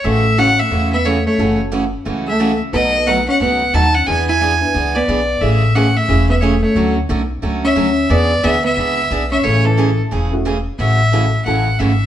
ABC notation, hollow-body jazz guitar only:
X:1
M:4/4
L:1/8
Q:"Swing" 1/4=179
K:A
V:1 name="Hollow-body jazz guitar"
A,2 C A,2 B, A, A,- | A, z4 A,2 z | B,2 B, C B,2 ^D C | E E4 B,3 |
A,2 C A,2 B, A, A,- | A, z4 C3 | B,2 B, B,4 C | A, E,2 z4 z |
z8 |]